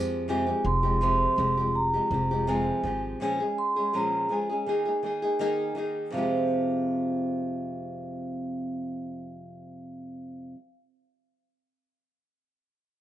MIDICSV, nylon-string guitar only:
0, 0, Header, 1, 2, 480
1, 0, Start_track
1, 0, Key_signature, -4, "minor"
1, 0, Tempo, 729927
1, 183, Time_signature, 4, 2, 24, 8
1, 8555, End_track
2, 0, Start_track
2, 0, Title_t, "Nylon-string guitar"
2, 0, Program_c, 0, 24
2, 0, Note_on_c, 0, 53, 75
2, 0, Note_on_c, 0, 56, 76
2, 0, Note_on_c, 0, 60, 74
2, 0, Note_on_c, 0, 67, 86
2, 181, Note_off_c, 0, 53, 0
2, 183, Note_on_c, 0, 41, 81
2, 184, Note_off_c, 0, 56, 0
2, 187, Note_off_c, 0, 60, 0
2, 188, Note_on_c, 0, 48, 85
2, 189, Note_on_c, 0, 53, 91
2, 190, Note_off_c, 0, 67, 0
2, 192, Note_on_c, 0, 56, 80
2, 195, Note_on_c, 0, 60, 96
2, 198, Note_on_c, 0, 67, 94
2, 300, Note_off_c, 0, 67, 0
2, 307, Note_on_c, 0, 67, 65
2, 309, Note_off_c, 0, 60, 0
2, 315, Note_off_c, 0, 41, 0
2, 316, Note_off_c, 0, 56, 0
2, 317, Note_on_c, 0, 60, 58
2, 318, Note_off_c, 0, 48, 0
2, 318, Note_off_c, 0, 53, 0
2, 324, Note_on_c, 0, 56, 52
2, 332, Note_on_c, 0, 53, 46
2, 537, Note_off_c, 0, 67, 0
2, 545, Note_on_c, 0, 67, 59
2, 548, Note_off_c, 0, 60, 0
2, 555, Note_off_c, 0, 56, 0
2, 555, Note_on_c, 0, 60, 54
2, 561, Note_off_c, 0, 53, 0
2, 563, Note_on_c, 0, 56, 53
2, 569, Note_on_c, 0, 53, 45
2, 658, Note_off_c, 0, 67, 0
2, 662, Note_off_c, 0, 53, 0
2, 663, Note_off_c, 0, 60, 0
2, 663, Note_on_c, 0, 41, 86
2, 664, Note_on_c, 0, 48, 79
2, 666, Note_off_c, 0, 56, 0
2, 670, Note_on_c, 0, 53, 91
2, 674, Note_on_c, 0, 56, 88
2, 675, Note_on_c, 0, 60, 85
2, 679, Note_on_c, 0, 67, 91
2, 887, Note_off_c, 0, 53, 0
2, 895, Note_on_c, 0, 53, 59
2, 898, Note_off_c, 0, 56, 0
2, 903, Note_off_c, 0, 41, 0
2, 904, Note_off_c, 0, 48, 0
2, 906, Note_off_c, 0, 60, 0
2, 906, Note_on_c, 0, 56, 63
2, 911, Note_off_c, 0, 67, 0
2, 914, Note_on_c, 0, 60, 70
2, 918, Note_on_c, 0, 67, 77
2, 1027, Note_off_c, 0, 67, 0
2, 1031, Note_off_c, 0, 53, 0
2, 1035, Note_off_c, 0, 60, 0
2, 1035, Note_on_c, 0, 67, 59
2, 1037, Note_off_c, 0, 56, 0
2, 1043, Note_on_c, 0, 60, 53
2, 1050, Note_on_c, 0, 56, 50
2, 1057, Note_on_c, 0, 53, 45
2, 1265, Note_off_c, 0, 67, 0
2, 1271, Note_off_c, 0, 60, 0
2, 1273, Note_on_c, 0, 67, 57
2, 1279, Note_off_c, 0, 56, 0
2, 1279, Note_on_c, 0, 60, 54
2, 1286, Note_off_c, 0, 53, 0
2, 1286, Note_on_c, 0, 56, 47
2, 1294, Note_on_c, 0, 53, 49
2, 1378, Note_off_c, 0, 53, 0
2, 1382, Note_off_c, 0, 67, 0
2, 1385, Note_off_c, 0, 60, 0
2, 1386, Note_on_c, 0, 53, 55
2, 1387, Note_off_c, 0, 56, 0
2, 1395, Note_on_c, 0, 56, 65
2, 1405, Note_on_c, 0, 60, 71
2, 1408, Note_on_c, 0, 67, 71
2, 1511, Note_off_c, 0, 67, 0
2, 1517, Note_off_c, 0, 53, 0
2, 1519, Note_on_c, 0, 67, 65
2, 1521, Note_off_c, 0, 56, 0
2, 1521, Note_off_c, 0, 60, 0
2, 1529, Note_on_c, 0, 60, 57
2, 1535, Note_on_c, 0, 56, 54
2, 1542, Note_on_c, 0, 53, 47
2, 1625, Note_off_c, 0, 53, 0
2, 1625, Note_off_c, 0, 67, 0
2, 1626, Note_on_c, 0, 41, 91
2, 1628, Note_off_c, 0, 56, 0
2, 1628, Note_on_c, 0, 48, 82
2, 1630, Note_off_c, 0, 60, 0
2, 1633, Note_on_c, 0, 53, 93
2, 1636, Note_on_c, 0, 56, 94
2, 1637, Note_on_c, 0, 60, 95
2, 1856, Note_off_c, 0, 53, 0
2, 1864, Note_on_c, 0, 53, 64
2, 1865, Note_off_c, 0, 41, 0
2, 1865, Note_off_c, 0, 56, 0
2, 1866, Note_off_c, 0, 48, 0
2, 1871, Note_off_c, 0, 60, 0
2, 1873, Note_on_c, 0, 56, 73
2, 1878, Note_on_c, 0, 60, 72
2, 1885, Note_on_c, 0, 67, 77
2, 2104, Note_off_c, 0, 53, 0
2, 2104, Note_on_c, 0, 46, 80
2, 2106, Note_off_c, 0, 56, 0
2, 2111, Note_off_c, 0, 60, 0
2, 2112, Note_on_c, 0, 53, 87
2, 2113, Note_on_c, 0, 56, 84
2, 2115, Note_off_c, 0, 67, 0
2, 2118, Note_on_c, 0, 61, 90
2, 2122, Note_on_c, 0, 68, 88
2, 2227, Note_off_c, 0, 68, 0
2, 2235, Note_on_c, 0, 68, 61
2, 2236, Note_off_c, 0, 46, 0
2, 2239, Note_off_c, 0, 61, 0
2, 2240, Note_off_c, 0, 53, 0
2, 2241, Note_off_c, 0, 56, 0
2, 2246, Note_on_c, 0, 61, 49
2, 2255, Note_on_c, 0, 56, 48
2, 2466, Note_off_c, 0, 68, 0
2, 2474, Note_on_c, 0, 68, 55
2, 2481, Note_off_c, 0, 61, 0
2, 2485, Note_off_c, 0, 56, 0
2, 2488, Note_on_c, 0, 61, 51
2, 2497, Note_on_c, 0, 56, 47
2, 2583, Note_off_c, 0, 68, 0
2, 2584, Note_off_c, 0, 56, 0
2, 2586, Note_on_c, 0, 46, 76
2, 2590, Note_off_c, 0, 61, 0
2, 2590, Note_on_c, 0, 53, 81
2, 2591, Note_on_c, 0, 56, 81
2, 2597, Note_on_c, 0, 61, 82
2, 2602, Note_on_c, 0, 68, 85
2, 2812, Note_off_c, 0, 53, 0
2, 2820, Note_on_c, 0, 53, 58
2, 2822, Note_off_c, 0, 56, 0
2, 2825, Note_off_c, 0, 46, 0
2, 2827, Note_off_c, 0, 61, 0
2, 2830, Note_on_c, 0, 56, 63
2, 2833, Note_off_c, 0, 68, 0
2, 2835, Note_on_c, 0, 61, 61
2, 2842, Note_on_c, 0, 68, 65
2, 2948, Note_off_c, 0, 68, 0
2, 2954, Note_off_c, 0, 53, 0
2, 2956, Note_on_c, 0, 68, 57
2, 2959, Note_off_c, 0, 56, 0
2, 2959, Note_off_c, 0, 61, 0
2, 2967, Note_on_c, 0, 61, 56
2, 2979, Note_on_c, 0, 56, 50
2, 3064, Note_off_c, 0, 68, 0
2, 3067, Note_on_c, 0, 51, 68
2, 3070, Note_off_c, 0, 61, 0
2, 3071, Note_off_c, 0, 56, 0
2, 3074, Note_on_c, 0, 58, 76
2, 3081, Note_on_c, 0, 63, 75
2, 3084, Note_on_c, 0, 68, 82
2, 3184, Note_off_c, 0, 68, 0
2, 3192, Note_on_c, 0, 68, 61
2, 3198, Note_off_c, 0, 51, 0
2, 3200, Note_off_c, 0, 63, 0
2, 3201, Note_off_c, 0, 58, 0
2, 3208, Note_on_c, 0, 63, 50
2, 3214, Note_on_c, 0, 58, 45
2, 3302, Note_off_c, 0, 68, 0
2, 3306, Note_on_c, 0, 51, 60
2, 3307, Note_off_c, 0, 58, 0
2, 3310, Note_off_c, 0, 63, 0
2, 3315, Note_on_c, 0, 58, 62
2, 3321, Note_on_c, 0, 63, 58
2, 3328, Note_on_c, 0, 68, 63
2, 3426, Note_off_c, 0, 68, 0
2, 3434, Note_on_c, 0, 68, 62
2, 3437, Note_off_c, 0, 51, 0
2, 3440, Note_off_c, 0, 63, 0
2, 3442, Note_off_c, 0, 58, 0
2, 3448, Note_on_c, 0, 63, 55
2, 3456, Note_on_c, 0, 58, 53
2, 3543, Note_off_c, 0, 68, 0
2, 3546, Note_off_c, 0, 58, 0
2, 3546, Note_on_c, 0, 51, 100
2, 3548, Note_off_c, 0, 63, 0
2, 3553, Note_on_c, 0, 58, 99
2, 3556, Note_on_c, 0, 63, 105
2, 3559, Note_on_c, 0, 68, 106
2, 3772, Note_off_c, 0, 51, 0
2, 3780, Note_on_c, 0, 51, 70
2, 3781, Note_off_c, 0, 58, 0
2, 3789, Note_off_c, 0, 63, 0
2, 3789, Note_on_c, 0, 58, 66
2, 3792, Note_off_c, 0, 68, 0
2, 3797, Note_on_c, 0, 63, 69
2, 3803, Note_on_c, 0, 68, 76
2, 4015, Note_on_c, 0, 41, 80
2, 4022, Note_off_c, 0, 51, 0
2, 4027, Note_off_c, 0, 58, 0
2, 4027, Note_on_c, 0, 48, 91
2, 4031, Note_off_c, 0, 63, 0
2, 4034, Note_off_c, 0, 68, 0
2, 4038, Note_on_c, 0, 53, 86
2, 4046, Note_on_c, 0, 56, 82
2, 4057, Note_on_c, 0, 60, 97
2, 4066, Note_on_c, 0, 67, 87
2, 6927, Note_off_c, 0, 41, 0
2, 6933, Note_off_c, 0, 48, 0
2, 6939, Note_off_c, 0, 53, 0
2, 6943, Note_off_c, 0, 56, 0
2, 6948, Note_off_c, 0, 60, 0
2, 6953, Note_off_c, 0, 67, 0
2, 8555, End_track
0, 0, End_of_file